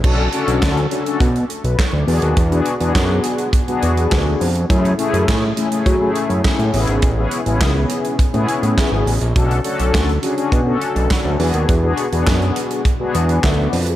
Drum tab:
CC |x---------------|----------------|----------------|----------------|
HH |--xxxxxxxxxxx-ox|xxxxx-xxxxxxx-ox|xxxxx-xxx-xxxxox|x-xxx-xxxxxxx-ox|
CP |----x-------x---|----x-------x---|----x-------x---|----x-------x---|
SD |----o-------o---|----o-------o---|----o-------o---|----o-------o---|
BD |o---o---o---o---|o---o---o---o---|o---o---o---o---|o---o---o---o---|

CC |----------------|----------------|
HH |xxxxxxxxx-xxx-ox|x-xxxxxxx-xxx-ox|
CP |----x-------x---|----x-------x---|
SD |----o-------o---|----o-------o---|
BD |o---o---o---o---|o---o---o---o---|